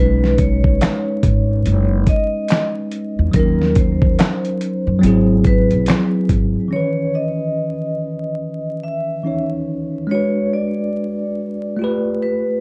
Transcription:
Already playing: upright bass B1, tine electric piano G#3 C#4 D#4, vibraphone B4
0.00 tine electric piano B4
0.24 snare
0.38 vibraphone C#5, kick, closed hi-hat
0.64 kick
0.81 snare, clap, closed hi-hat
1.23 upright bass G#1, kick, closed hi-hat
1.66 upright bass F#1, closed hi-hat
2.07 vibraphone D#5, kick, closed hi-hat
2.48 snare, clap, closed hi-hat
2.91 closed hi-hat
3.19 upright bass E2
3.31 upright bass D#2, tine electric piano F#3 C#4, kick, closed hi-hat
3.36 tine electric piano D#4 A#4, vibraphone A#4
3.62 snare
3.75 vibraphone C5, kick, closed hi-hat
4.02 kick
4.19 snare, clap, closed hi-hat
4.45 closed hi-hat
4.61 closed hi-hat
4.87 upright bass F#2
4.99 tine electric piano F#3 C4
5.03 upright bass G#1, tine electric piano E4 G#4, closed hi-hat
5.44 vibraphone B4, kick, closed hi-hat
5.71 upright bass B1, closed hi-hat
5.86 snare, clap, closed hi-hat
6.29 upright bass G#1, kick, closed hi-hat
6.68 tine electric piano E3 C#4
6.73 tine electric piano D#3 B4, vibraphone C#5
7.15 vibraphone D#5
8.83 vibraphone E5
9.23 tine electric piano E3 C#4 D#4 C#5
10.07 tine electric piano G#3 D4
10.11 tine electric piano F#4 B4, vibraphone C#5
10.53 vibraphone D5
11.77 tine electric piano A3 F4
11.82 tine electric piano G4 B4
12.22 vibraphone B4

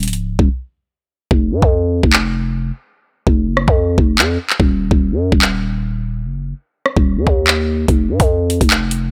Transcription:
0.03 closed hi-hat
0.08 808-style bass C#1, closed hi-hat
0.13 closed hi-hat
0.39 808-style bass D#1, kick
1.31 808-style bass F1, kick
1.51 808-style bass G#2
1.62 808-style bass F2, kick
2.03 808-style bass F1, kick
2.13 clap
3.27 808-style bass F1, kick
3.47 808-style bass F#1
3.57 cross-stick
3.68 808-style bass F2, kick
3.98 808-style bass F1, kick
4.19 808-style bass F2, clap
4.50 clap
4.60 808-style bass D#1, kick
4.91 808-style bass D#1, kick
5.12 808-style bass F#2
5.32 808-style bass D#1, kick
5.42 clap
6.24 808-style bass F#1
6.86 cross-stick
6.97 808-style bass D#1, kick
7.17 808-style bass F#2
7.27 808-style bass D#2, kick
7.47 clap
7.88 808-style bass F1, kick, closed hi-hat
8.09 808-style bass G#2
8.20 808-style bass F2, kick, closed hi-hat
8.50 closed hi-hat
8.61 808-style bass F1, kick, closed hi-hat
8.71 clap, closed hi-hat
8.91 closed hi-hat

